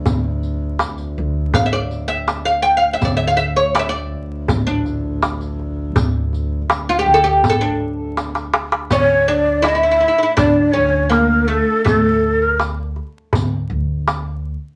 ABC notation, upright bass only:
X:1
M:4/4
L:1/8
Q:1/4=81
K:none
V:1 name="Upright bass" clef=bass
D,,3 D,, A,,, z3 | D,,4 A,,,4 | D,,3 D,, A,,, z3 | D,,4 D,, D,,3 |
D,,4 D,, D,,3 |]